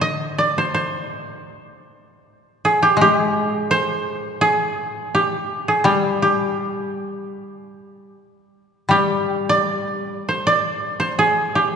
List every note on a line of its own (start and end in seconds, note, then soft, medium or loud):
0.00 1.17 D3 soft
0.00 0.58 C5 medium
0.00 0.44 D#5 medium
0.38 1.98 D5 medium
0.58 0.74 C5 medium
0.74 2.46 C5 medium
2.65 2.89 G#4 medium
2.83 3.01 G4 medium
2.97 5.12 G#3 medium
3.01 3.17 G4 medium
3.17 4.41 G#4 medium
3.71 5.42 C5 medium
4.41 5.21 G#4 medium
5.15 5.74 G4 medium
5.68 5.91 G#4 medium
5.84 8.11 G3 medium
5.84 6.22 G4 medium
6.22 8.26 G4 medium
8.89 11.15 G3 soft
8.89 10.95 G4 medium
9.49 10.46 D5 medium
10.29 10.99 C5 medium
10.47 11.76 D5 medium
11.00 11.76 C5 medium
11.19 11.61 G#4 medium
11.55 11.76 G4 medium